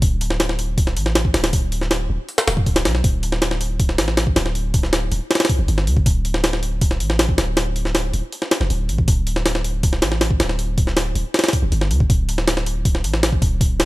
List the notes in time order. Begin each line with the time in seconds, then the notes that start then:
0.02 D1, kick, open hi-hat
0.21 open hi-hat
0.30 snare
0.40 snare, open hi-hat
0.49 snare
0.59 open hi-hat
0.78 kick, open hi-hat
0.87 snare
0.96 A1, open hi-hat
1.06 snare
1.15 snare, open hi-hat
1.25 kick
1.34 D1, snare, open hi-hat
1.44 snare, open hi-hat
1.53 kick, open hi-hat
1.72 open hi-hat
1.81 snare
1.91 snare, open hi-hat
2.10 D1
2.29 open hi-hat
2.38 snare, open hi-hat
2.48 D1, snare, open hi-hat
2.57 kick
2.66 kick, open hi-hat
2.76 snare, open hi-hat
2.85 B1, snare, open hi-hat
2.95 snare
3.04 D1, kick, open hi-hat
3.23 open hi-hat
3.32 snare
3.42 snare, open hi-hat
3.51 snare
3.61 open hi-hat
3.80 kick, open hi-hat
3.89 snare
3.98 A1, snare, open hi-hat
4.08 snare
4.17 snare, open hi-hat
4.27 kick
4.36 D1, snare, open hi-hat
4.46 snare
4.55 open hi-hat
4.74 kick, open hi-hat
4.83 snare
4.93 snare, open hi-hat
5.12 D1, open hi-hat
5.31 snare, open hi-hat
5.35 snare, open hi-hat
5.40 snare, open hi-hat
5.45 snare, open hi-hat
5.49 kick, open hi-hat
5.59 F1
5.68 G1, open hi-hat
5.78 snare
5.87 D2, open hi-hat
5.97 F1, kick
6.06 D1, kick, open hi-hat
6.25 open hi-hat
6.34 snare
6.44 snare, open hi-hat
6.53 snare
6.63 open hi-hat
6.81 kick, open hi-hat
6.91 snare
7.00 A1, open hi-hat
7.10 snare
7.19 snare, open hi-hat
7.29 kick
7.38 D1, snare, open hi-hat
7.57 snare, open hi-hat
7.76 open hi-hat
7.85 snare
7.95 snare, open hi-hat
8.13 D1, open hi-hat
8.32 open hi-hat
8.42 snare
8.51 snare, open hi-hat
8.61 F1, snare
8.70 D1, open hi-hat
8.89 A1, open hi-hat
8.98 kick
9.08 D1, kick, open hi-hat
9.27 open hi-hat
9.36 snare
9.46 snare, open hi-hat
9.55 snare
9.64 open hi-hat
9.83 kick, open hi-hat
9.93 snare
10.02 A1, snare, open hi-hat
10.12 snare
10.21 snare, open hi-hat
10.30 kick
10.40 D1, snare, open hi-hat
10.49 snare
10.59 open hi-hat
10.78 kick, open hi-hat
10.87 snare
10.97 snare, open hi-hat
11.15 D1, open hi-hat
11.34 snare, open hi-hat
11.39 snare, open hi-hat
11.44 snare, open hi-hat
11.48 snare, open hi-hat
11.53 kick, open hi-hat
11.62 F1
11.72 G1, open hi-hat
11.81 snare
11.91 D2, open hi-hat
12.00 F1, kick
12.10 D1, kick, open hi-hat
12.29 open hi-hat
12.38 snare
12.48 snare, open hi-hat
12.57 snare
12.66 open hi-hat
12.85 kick, open hi-hat
12.95 snare
13.04 A1, open hi-hat
13.14 snare
13.23 snare, open hi-hat
13.32 kick
13.42 D1, kick, open hi-hat
13.61 kick, open hi-hat
13.80 snare, open hi-hat